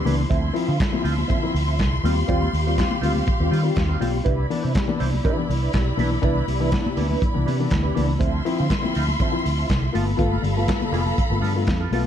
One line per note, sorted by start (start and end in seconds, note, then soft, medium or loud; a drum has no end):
0.00 0.27 E4 medium
0.00 0.27 D5 medium
0.00 0.29 C6 medium
0.05 0.24 C#2 medium
0.05 0.19 E3 medium
0.05 0.19 B3 medium
0.05 0.19 D4 medium
0.05 0.21 D4 medium
0.05 0.18 E4 medium
0.05 0.17 B4 medium
0.05 open hi-hat medium
0.05 muted conga soft
0.05 high conga medium
0.18 muted clean electric guitar stroke soft
0.29 0.49 D2 loud
0.29 0.44 D3 medium
0.29 0.53 F3 medium
0.29 0.53 C4 medium
0.29 0.53 E4 loud
0.29 2.02 F4 medium
0.29 2.02 E5 medium
0.29 4.22 C6 medium
0.29 kick loud
0.29 closed hi-hat medium
0.53 0.68 F3 medium
0.53 0.65 C4 medium
0.53 0.65 E4 loud
0.53 muted clean electric guitar stroke soft
0.53 open hi-hat medium
0.67 0.77 D3 medium
0.67 0.79 F3 medium
0.67 0.72 C4 soft
0.67 0.79 C4 medium
0.67 0.72 E4 soft
0.67 0.79 F4 medium
0.79 0.94 D3 medium
0.79 kick loud
0.79 snare loud
0.79 clap medium
0.79 closed hi-hat medium
0.92 1.05 F3 medium
0.92 1.02 C4 medium
0.92 1.02 E4 medium
0.92 muted clean electric guitar stroke soft
0.92 high conga medium
1.03 1.23 D2 medium
1.03 1.19 F3 medium
1.03 1.09 C4 soft
1.03 1.17 C4 medium
1.03 1.09 E4 soft
1.03 1.17 F4 medium
1.03 open hi-hat medium
1.17 muted clean electric guitar stroke soft
1.17 high conga medium
1.17 low conga medium
1.28 1.43 D3 medium
1.28 1.43 F3 medium
1.28 1.41 C4 medium
1.28 1.41 E4 medium
1.28 kick loud
1.28 closed hi-hat medium
1.28 low conga medium
1.42 1.55 F3 medium
1.42 1.53 C4 medium
1.42 1.53 E4 medium
1.42 muted clean electric guitar stroke soft
1.53 1.80 D2 medium
1.53 1.60 C4 soft
1.53 1.60 E4 soft
1.53 muted clean electric guitar stroke soft
1.53 open hi-hat medium
1.67 1.77 F3 medium
1.67 1.77 C4 medium
1.67 1.78 E4 medium
1.78 1.98 C2 medium
1.78 1.93 D3 medium
1.78 muted clean electric guitar stroke soft
1.78 kick medium
1.78 snare medium
1.78 clap medium
1.78 closed hi-hat soft
1.92 muted clean electric guitar stroke medium
2.03 2.21 D#2 loud
2.03 2.17 G3 medium
2.03 2.19 G3 medium
2.03 2.16 C4 medium
2.03 2.17 C4 medium
2.03 2.16 F4 medium
2.03 2.15 F4 medium
2.03 4.25 G4 medium
2.03 4.25 F5 medium
2.03 open hi-hat medium
2.03 muted conga soft
2.03 high conga medium
2.17 2.22 C4 soft
2.17 2.22 F4 soft
2.17 muted clean electric guitar stroke soft
2.27 2.46 D#2 loud
2.27 2.42 G3 medium
2.27 2.51 G3 medium
2.27 2.42 C4 medium
2.27 2.52 C4 loud
2.27 2.42 F4 loud
2.27 2.52 F4 loud
2.27 kick loud
2.27 closed hi-hat medium
2.27 muted conga soft
2.42 high conga medium
2.53 2.81 D#2 medium
2.53 2.67 D#3 medium
2.53 muted clean electric guitar stroke soft
2.53 open hi-hat medium
2.53 muted conga soft
2.67 2.79 G3 medium
2.67 2.77 G3 medium
2.67 2.76 C4 medium
2.67 2.77 C4 medium
2.67 2.77 F4 medium
2.78 2.92 C4 medium
2.78 2.92 F4 medium
2.78 kick loud
2.78 snare loud
2.78 clap medium
2.78 closed hi-hat medium
2.90 3.04 D#3 medium
2.90 muted clean electric guitar stroke soft
2.90 high conga medium
3.01 3.20 D2 medium
3.01 3.14 G3 medium
3.01 3.14 C4 medium
3.01 3.16 C4 medium
3.01 3.13 F4 medium
3.01 3.16 F4 medium
3.01 open hi-hat medium
3.01 muted conga soft
3.15 3.26 G3 soft
3.15 3.26 C4 medium
3.15 3.26 F4 medium
3.15 high conga medium
3.15 low conga medium
3.27 kick loud
3.27 closed hi-hat medium
3.27 muted conga soft
3.27 low conga medium
3.40 3.49 D#2 medium
3.40 3.53 G3 medium
3.40 3.53 C4 medium
3.40 3.53 F4 medium
3.40 muted clean electric guitar stroke soft
3.50 3.65 D#3 medium
3.50 3.70 D#3 medium
3.50 3.66 G3 medium
3.50 3.63 C4 medium
3.50 3.62 F4 medium
3.50 open hi-hat medium
3.50 muted conga soft
3.63 3.76 G3 medium
3.63 3.73 C4 medium
3.63 3.73 F4 medium
3.63 muted clean electric guitar stroke soft
3.74 3.95 D#2 medium
3.74 3.81 C4 soft
3.74 3.81 F4 soft
3.74 muted clean electric guitar stroke soft
3.74 kick medium
3.74 snare medium
3.74 clap medium
3.74 closed hi-hat soft
3.88 4.01 D#3 medium
3.88 3.99 G3 medium
3.88 4.00 C4 medium
3.88 3.99 F4 medium
4.00 4.19 B1 medium
4.00 4.14 G3 medium
4.00 4.16 G3 medium
4.00 4.14 C4 medium
4.00 4.13 C4 medium
4.00 4.14 F4 medium
4.00 4.13 F4 medium
4.00 open hi-hat medium
4.00 muted conga soft
4.00 high conga medium
4.14 muted clean electric guitar stroke soft
4.24 4.44 C2 loud
4.24 4.39 C3 medium
4.24 4.47 D4 medium
4.24 4.48 E4 medium
4.24 8.18 E4 medium
4.24 4.48 B4 medium
4.24 kick loud
4.24 closed hi-hat medium
4.28 8.18 D5 medium
4.28 8.18 B5 medium
4.49 4.64 E3 medium
4.49 4.62 B3 medium
4.49 4.62 D4 loud
4.49 muted clean electric guitar stroke soft
4.49 open hi-hat medium
4.62 4.73 C3 medium
4.62 4.68 B3 soft
4.62 4.68 D4 soft
4.62 4.74 D4 medium
4.62 4.74 E4 medium
4.62 4.74 C5 medium
4.75 4.89 C3 medium
4.75 muted clean electric guitar stroke soft
4.75 kick loud
4.75 snare loud
4.75 clap medium
4.75 closed hi-hat medium
4.75 muted conga soft
4.87 5.00 E3 medium
4.87 4.99 B3 medium
4.87 4.99 D4 medium
4.87 muted clean electric guitar stroke soft
4.87 high conga medium
4.99 5.18 C2 medium
4.99 5.05 B3 soft
4.99 5.14 D4 medium
4.99 5.06 D4 soft
4.99 5.12 E4 medium
4.99 5.12 C5 medium
4.99 open hi-hat medium
5.13 muted clean electric guitar stroke soft
5.13 high conga medium
5.13 low conga medium
5.24 5.38 C3 soft
5.24 5.45 D4 medium
5.24 5.38 E4 medium
5.24 5.38 B4 loud
5.24 kick loud
5.24 closed hi-hat medium
5.24 muted conga soft
5.24 low conga medium
5.37 5.50 E3 medium
5.37 5.48 B3 medium
5.37 5.48 D4 medium
5.37 muted clean electric guitar stroke soft
5.49 5.67 C2 medium
5.49 5.55 B3 soft
5.49 5.55 D4 soft
5.49 muted clean electric guitar stroke soft
5.49 open hi-hat medium
5.63 5.72 D4 soft
5.63 5.73 E4 soft
5.63 5.73 B4 medium
5.73 5.92 B1 medium
5.73 5.88 C3 medium
5.73 muted clean electric guitar stroke soft
5.73 kick medium
5.73 snare medium
5.73 clap medium
5.73 closed hi-hat soft
5.88 muted clean electric guitar stroke soft
5.97 6.16 B1 medium
5.97 6.12 E3 medium
5.97 6.10 B3 medium
5.97 6.10 D4 medium
5.97 6.13 D4 medium
5.97 6.12 E4 medium
5.97 6.11 B4 medium
5.97 open hi-hat medium
5.97 high conga medium
6.11 6.16 B3 soft
6.11 6.16 D4 soft
6.11 muted clean electric guitar stroke soft
6.22 6.41 C2 loud
6.22 6.36 E3 medium
6.22 6.36 B3 medium
6.22 6.36 D4 loud
6.22 6.46 D4 medium
6.22 6.47 E4 loud
6.22 6.47 B4 loud
6.22 kick loud
6.22 closed hi-hat medium
6.22 muted conga soft
6.48 6.75 C2 medium
6.48 6.62 C3 medium
6.48 open hi-hat medium
6.48 muted conga soft
6.60 6.73 E3 medium
6.60 6.70 B3 medium
6.60 6.71 D4 medium
6.60 6.70 D4 medium
6.60 6.72 E4 medium
6.60 6.71 B4 medium
6.71 6.86 B3 medium
6.71 6.86 D4 medium
6.71 kick loud
6.71 snare loud
6.71 clap medium
6.71 closed hi-hat medium
6.71 muted conga soft
6.86 6.98 C3 medium
6.86 muted clean electric guitar stroke soft
6.86 high conga medium
6.96 7.15 D2 medium
6.96 7.11 B3 medium
6.96 7.09 D4 medium
6.96 7.11 D4 medium
6.96 7.09 E4 medium
6.96 7.08 B4 medium
6.96 open hi-hat medium
7.09 7.21 D4 medium
7.09 7.21 E4 medium
7.09 7.20 B4 medium
7.09 high conga medium
7.09 low conga medium
7.22 kick loud
7.22 closed hi-hat medium
7.22 low conga medium
7.34 7.44 C2 medium
7.34 7.47 E3 medium
7.34 7.47 B3 medium
7.34 7.47 D4 medium
7.34 muted clean electric guitar stroke soft
7.46 7.60 C3 medium
7.46 7.65 C3 medium
7.46 7.61 D4 medium
7.46 7.59 E4 medium
7.46 7.58 B4 medium
7.46 open hi-hat medium
7.46 muted conga soft
7.59 7.72 E3 medium
7.59 7.69 B3 medium
7.59 7.70 D4 medium
7.59 muted clean electric guitar stroke soft
7.70 7.90 D2 medium
7.70 7.76 B3 soft
7.70 7.77 D4 soft
7.70 muted clean electric guitar stroke soft
7.70 kick medium
7.70 snare medium
7.70 clap medium
7.70 closed hi-hat soft
7.70 muted conga soft
7.83 7.96 C3 medium
7.83 7.93 D4 medium
7.83 7.94 E4 medium
7.83 7.94 B4 medium
7.95 8.15 C#2 medium
7.95 8.10 E3 medium
7.95 8.10 B3 medium
7.95 8.10 D4 medium
7.95 8.08 E4 medium
7.95 8.07 B4 medium
7.95 open hi-hat medium
7.95 muted conga soft
7.95 high conga medium
8.09 muted clean electric guitar stroke soft
8.19 8.39 D2 loud
8.19 8.34 D3 medium
8.19 8.43 F3 medium
8.19 8.43 C4 medium
8.19 8.43 E4 loud
8.19 9.92 F4 medium
8.19 9.92 E5 medium
8.19 9.92 C6 medium
8.19 kick loud
8.19 closed hi-hat medium
8.45 8.59 F3 medium
8.45 8.57 C4 medium
8.45 8.57 E4 loud
8.45 open hi-hat medium
8.58 8.68 D3 medium
8.58 8.68 F3 medium
8.58 8.69 C4 medium
8.58 8.64 C4 soft
8.58 8.63 E4 soft
8.58 8.69 F4 medium
8.70 8.84 D3 medium
8.70 kick loud
8.70 snare loud
8.70 clap medium
8.70 closed hi-hat medium
8.81 8.95 F3 medium
8.81 8.93 C4 medium
8.81 8.92 E4 medium
8.81 muted clean electric guitar stroke soft
8.81 high conga medium
8.94 9.14 D2 loud
8.94 9.10 F3 medium
8.94 9.00 C4 soft
8.94 9.09 C4 medium
8.94 9.00 E4 soft
8.94 9.09 F4 medium
8.94 open hi-hat medium
8.94 muted conga soft
9.09 muted clean electric guitar stroke soft
9.09 high conga medium
9.09 low conga medium
9.19 9.33 D3 medium
9.19 9.35 F3 medium
9.19 9.33 C4 medium
9.19 9.32 E4 medium
9.19 kick loud
9.19 closed hi-hat medium
9.19 muted conga soft
9.19 low conga medium
9.31 9.45 F3 medium
9.31 9.42 C4 medium
9.31 9.43 E4 medium
9.31 muted clean electric guitar stroke medium
9.44 9.63 D2 medium
9.44 9.49 C4 soft
9.44 9.50 E4 soft
9.44 muted clean electric guitar stroke soft
9.44 open hi-hat medium
9.58 9.68 F3 medium
9.58 9.68 C4 medium
9.58 9.68 E4 medium
9.69 9.88 C2 medium
9.69 9.83 D3 medium
9.69 kick medium
9.69 snare medium
9.69 clap medium
9.69 closed hi-hat soft
9.83 muted clean electric guitar stroke soft
9.92 10.13 G1 medium
9.92 10.07 A3 medium
9.92 10.05 B3 medium
9.92 10.09 B3 medium
9.92 10.06 F4 medium
9.92 10.07 F4 medium
9.92 10.06 A4 medium
9.92 12.06 F5 medium
9.92 12.06 B5 medium
9.92 open hi-hat medium
9.92 muted conga soft
9.92 high conga medium
9.96 12.06 A4 medium
10.06 10.11 B3 soft
10.06 10.12 F4 soft
10.06 muted clean electric guitar stroke medium
10.17 10.37 G1 loud
10.17 10.32 A3 medium
10.17 10.32 B3 medium
10.17 10.42 B3 medium
10.17 10.32 F4 loud
10.17 10.42 F4 medium
10.17 10.42 A4 medium
10.17 kick medium
10.17 closed hi-hat medium
10.33 high conga medium
10.42 10.71 G1 medium
10.42 10.57 G2 medium
10.42 10.57 D3 medium
10.42 muted clean electric guitar stroke soft
10.42 open hi-hat medium
10.42 muted conga soft
10.56 10.69 A3 medium
10.56 10.65 B3 medium
10.56 10.67 B3 medium
10.56 10.66 F4 medium
10.56 10.68 F4 medium
10.56 10.67 A4 medium
10.67 10.81 B3 medium
10.67 10.82 F4 medium
10.67 kick loud
10.67 snare loud
10.67 clap medium
10.67 closed hi-hat medium
10.79 10.93 G2 medium
10.79 10.93 D3 medium
10.79 muted clean electric guitar stroke medium
10.79 high conga medium
10.92 11.11 F1 medium
10.92 11.06 B3 medium
10.92 11.05 B3 medium
10.92 11.07 F4 medium
10.92 11.05 F4 medium
10.92 11.04 A4 loud
10.92 open hi-hat medium
11.05 11.17 B3 soft
11.05 11.16 F4 medium
11.05 11.16 A4 medium
11.05 high conga medium
11.05 low conga medium
11.18 kick loud
11.18 closed hi-hat medium
11.18 muted conga soft
11.18 low conga medium
11.30 11.39 G1 medium
11.30 11.43 A3 medium
11.30 11.43 B3 medium
11.30 11.43 F4 medium
11.30 muted clean electric guitar stroke soft
11.41 11.69 G2 medium
11.41 11.56 G2 medium
11.41 11.56 D3 medium
11.41 11.57 B3 medium
11.41 11.54 F4 medium
11.41 11.54 A4 medium
11.41 open hi-hat medium
11.41 muted conga soft
11.55 11.68 A3 medium
11.55 11.68 B3 medium
11.55 11.68 F4 medium
11.55 muted clean electric guitar stroke soft
11.67 11.86 F2 medium
11.67 muted clean electric guitar stroke soft
11.67 kick medium
11.67 snare medium
11.67 clap medium
11.67 closed hi-hat soft
11.67 muted conga soft
11.80 11.91 B3 medium
11.80 11.91 F4 medium
11.80 11.91 A4 medium
11.91 12.06 B1 medium
11.91 12.06 A3 medium
11.91 12.06 B3 medium
11.91 12.05 F4 medium
11.91 12.06 F4 medium
11.91 12.04 A4 medium
11.91 open hi-hat medium
11.91 high conga medium